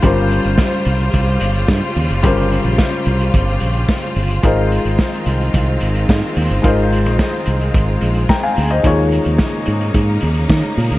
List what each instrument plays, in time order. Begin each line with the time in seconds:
Already playing: string section F4 C5
0.02 fingered electric bass G1, string section C#3 G3, grand piano G3 C#4 F4 A#4 C5, kick, closed hi-hat
0.31 closed hi-hat
0.44 fingered electric bass G1, closed hi-hat
0.58 kick, snare
0.85 fingered electric bass C2, closed hi-hat
1.00 closed hi-hat
1.14 fingered electric bass C2, kick, closed hi-hat
1.40 fingered electric bass G1, closed hi-hat
1.53 closed hi-hat
1.68 fingered electric bass G2, kick, snare
1.80 closed hi-hat
1.95 fingered electric bass D#2, open hi-hat
2.10 fingered electric bass F#1, closed hi-hat
2.23 fingered electric bass G1, grand piano G3 C#4 F4 A#4 C5, kick, closed hi-hat
2.37 closed hi-hat
2.52 closed hi-hat
2.64 fingered electric bass A#1, closed hi-hat
2.78 kick, snare
3.05 fingered electric bass C2, closed hi-hat
3.20 closed hi-hat
3.34 fingered electric bass G1, kick, closed hi-hat
3.47 closed hi-hat
3.60 fingered electric bass A#1, closed hi-hat
3.73 closed hi-hat
3.89 kick, snare
4.01 closed hi-hat
4.16 fingered electric bass G1, open hi-hat
4.30 closed hi-hat
4.43 fingered electric bass G#1, string section D#3 G#3 C4, grand piano G#3 D#4 F4 A#4 C5, kick, closed hi-hat
4.72 closed hi-hat
4.85 fingered electric bass G#1, closed hi-hat
4.99 kick, snare
5.12 closed hi-hat
5.26 fingered electric bass C2, closed hi-hat
5.41 closed hi-hat
5.54 fingered electric bass C2, kick, closed hi-hat
5.81 fingered electric bass G#1, closed hi-hat
5.94 closed hi-hat
6.09 fingered electric bass G#2, kick, snare
6.36 fingered electric bass D#2, open hi-hat
6.51 fingered electric bass G1, closed hi-hat
6.62 fingered electric bass G#1, grand piano G#3 D#4 F4 A#4 C5, kick, closed hi-hat
6.93 closed hi-hat
7.06 fingered electric bass A#1, closed hi-hat
7.19 kick, snare
7.46 fingered electric bass C2, closed hi-hat
7.61 closed hi-hat
7.74 fingered electric bass G#1, kick, closed hi-hat
8.01 fingered electric bass A#1, closed hi-hat
8.14 closed hi-hat
8.29 grand piano G5 A#5, kick, snare
8.43 grand piano F5 G#5
8.56 fingered electric bass D2, snare, open hi-hat
8.70 grand piano C5 D#5, closed hi-hat
8.83 fingered electric bass D#2, string section C#3 A#3 D#4, grand piano D#3 D#4 F4 G#4 C#5, kick, closed hi-hat
9.12 closed hi-hat
9.25 fingered electric bass D#2, closed hi-hat
9.38 kick, snare
9.66 fingered electric bass G#2, closed hi-hat
9.81 closed hi-hat
9.94 fingered electric bass G#2, kick, closed hi-hat
10.21 fingered electric bass D#2, closed hi-hat
10.34 closed hi-hat
10.50 fingered electric bass D#3, kick, snare
10.62 closed hi-hat
10.77 fingered electric bass A#2, snare, open hi-hat
10.91 fingered electric bass D2, closed hi-hat